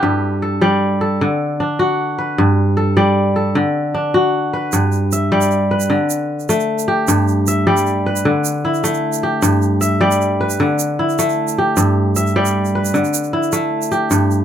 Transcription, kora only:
Already playing: D4 E4 G4 A4 B4
0.03 G2
0.42 A4
0.61 G3 D5
1.01 A4
1.21 D3
1.60 D4
1.79 F#4
2.18 B4
2.38 G2
2.77 A4
2.97 G3 D5
3.36 A4
3.55 D3
3.94 D4
4.14 F#4
4.53 B4
4.73 G2
5.13 E5
5.32 G3 D5
5.71 B4
5.90 D3
6.49 A3
6.88 G4
7.08 G2
7.48 E5
7.67 G3 D5
8.06 B4
8.25 D3
8.65 E4
8.84 A3
9.23 G4
9.42 G2
9.81 E5
10.01 G3 D5
10.41 B4
10.60 D3
10.99 E4
11.19 A3
11.58 G4
11.77 G2
12.16 E5
12.36 G3 D5
12.75 B4
12.94 D3
13.33 E4
13.53 A3
13.92 G4
14.11 G2

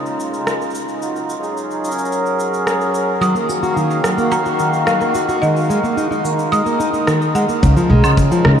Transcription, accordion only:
Already playing: C#3 G#3 D#4 F4
1.01 F#3
1.42 G#4
1.50 C#4
1.88 A#4
3.21 D#3
3.42 A#3
3.70 F5
4.20 F#4
5.42 G#3
5.60 A#4
5.76 D#4
7.63 C#3

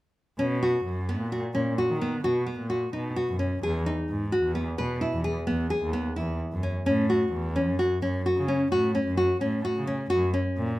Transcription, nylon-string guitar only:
0.39 C#4
0.63 F#4
1.09 B3
1.32 F#4
1.55 C#4
1.78 F#4
2.01 B3
2.24 F#4
2.46 B3
2.70 F#4
2.93 D#4
3.16 F#4
3.39 C#4
3.63 G#4
3.86 D#4
4.32 F#4
4.55 B3
4.78 B4
5.01 E4
5.24 G#4
5.47 B3
5.70 G#4
5.93 B3
6.16 E4
6.63 C#4
6.86 C#4
7.10 F#4
7.56 C#4
7.79 F#4
8.02 C#4
8.26 F#4
8.48 C#4
8.72 F#4
8.95 C#4
9.17 F#4
9.41 C#4
9.65 F#4
9.87 C#4
10.10 F#4
10.34 C#4

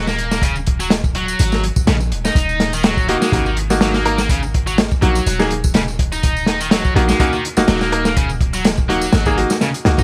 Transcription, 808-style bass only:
Already playing: D#1
1.40 G#1
1.76 A#1
1.88 A#1
2.12 D#1
2.35 D#1
3.32 G#1
5.02 A#1
5.26 D#1
6.96 A#1
7.57 D#1
7.68 D#1
9.13 G#1
9.86 C#2
9.98 D#2

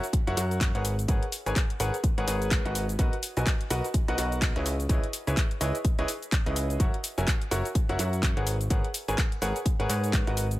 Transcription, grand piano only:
0.27 F#4 A#4 C#5 E5 F#5
0.37 F#4 A#4 C#5 E5 F#5
0.75 G#4 A#4 B4 C#5 F#5
1.08 G#4 A#4 B4 C#5 F#5
1.46 G#4 A#4 B4 C#5 G#5
1.80 G#4 A#4 B4 C#5 F#5
2.18 G#4 A#4 B4 C#5 F#5
2.28 G#4 A#4 B4 C#5 F#5
2.65 F#4 A#4 B4 D#5 F#5
2.99 F#4 A#4 B4 D#5 F#5
3.37 F#4 A#4 B4 D#5 G#5
3.70 F#4 A#4 B4 D#5 F#5
4.08 F#4 A#4 B4 D#5 F#5
4.18 F#4 A#4 B4 D#5 F#5
4.56 E4 G#4 B4 C#5 D#5
4.90 E4 G#4 B4 C#5 D#5
5.27 E4 G#4 B4 C#5 E5
5.61 E4 G#4 B4 C#5 D#5
5.99 E4 G#4 B4 C#5 D#5
6.46 E4 G#4 B4 C#5 D#5
6.80 F#4 A#4 C#5 E5 F#5
7.18 F#4 A#4 C#5 E5 G#5
7.51 F#4 A#4 C#5 E5 F#5
7.89 F#4 A#4 C#5 E5 F#5
7.99 F#4 A#4 C#5 E5 F#5
8.37 G#4 A#4 B4 C#5 F#5
8.70 G#4 A#4 B4 C#5 F#5
9.08 G#4 A#4 B4 C#5 G#5
9.42 G#4 A#4 B4 C#5 F#5
9.80 G#4 A#4 B4 C#5 F#5
9.89 G#4 A#4 B4 C#5 F#5
10.27 F#4 A#4 B4 D#5 F#5

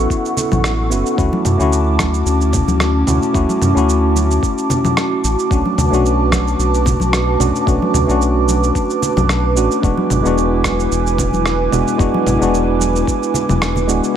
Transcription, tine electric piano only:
Already playing: B3 C#4 E4 F#4
0.90 B3 C#4 E4 F#4
1.17 A3 C#4 E4 F#4
1.58 A3 C#4 E4
1.62 F#4
3.06 A3 C#4 E4 F#4
3.33 A3 C#4 E4 F#4
3.74 A3 C#4 E4
3.78 F#4
5.50 A3 C#4 D4 F#4
5.90 A3 C#4 D4
5.94 F#4
7.39 A3 C#4 D4 F#4
7.66 A3 C#4 D4 F#4
8.07 A3 C#4 D4
8.11 F#4
9.55 A3 C#4 D4 F#4
9.82 G#3 B3 D4 F#4
10.23 G#3 B3 D4
10.27 F#4
11.72 G#3 B3 D4 F#4
11.98 G#3 B3 D4 F#4
12.39 G#3 B3 D4
12.43 F#4
13.87 G#3 B3 D4 F#4

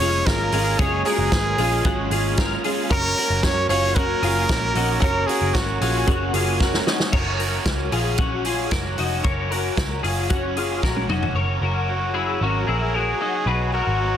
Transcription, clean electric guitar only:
0.01 F4 G#4
0.27 F4 A#4
0.53 F4 G#4
0.79 G#4 C#5
1.05 F#4 A#4
1.59 F4 G#4
1.85 C#4 F#4
2.12 F4 G#4
2.38 F4 A#4
2.65 F4 G#4
2.91 A#4 C#5
3.18 F#4 A#4
3.70 F4 G#4
3.96 C#4 F#4
4.22 F4 G#4
4.49 F#4 A#4
4.76 D#4 F#4
5.02 A#4 C#5
5.28 F#4 A#4
5.82 F4 G#4
6.08 C#4 F#4
6.34 F4 G#4
6.61 F#4 A#4
6.87 D#4 F#4
7.12 A#4 C#5
7.39 F#4 A#4
7.92 F4 G#4
8.18 C#4 F#4
8.46 F4 G#4
8.72 F#4 A#4
8.98 D#4 F#4
9.24 A#4 C#5
9.51 F#4 A#4
10.03 F4 G#4
10.30 C#4 F#4
10.57 F4 G#4
10.83 F#4 A#4
11.09 D#4 F#4
11.36 A#4 C#5
11.62 F#4 A#4
12.14 E4 G#4
12.42 C#4 F#4
12.67 E4 G#4
12.94 F#4 A#4
13.21 D#4 F#4
13.47 G#4 B4
13.74 F#4 A#4

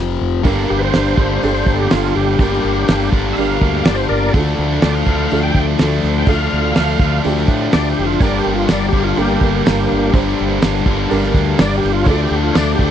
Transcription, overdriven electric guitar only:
Already playing: F2 C3 F3
0.43 G2 D3 G3
1.16 G2 D3 G3
2.39 G2 D3
2.43 G3
3.12 G2 D3 G3
4.33 D3 A3 D4
5.06 A3 D4
5.11 D3
6.28 D3 A3 D4
7.00 D3 A3 D4
8.21 G2 D3 G3
8.93 G2 D3 G3
10.13 G2 D3 G3
10.86 G2 D3 G3
12.05 D3 A3 D4
12.78 D3 A3 D4

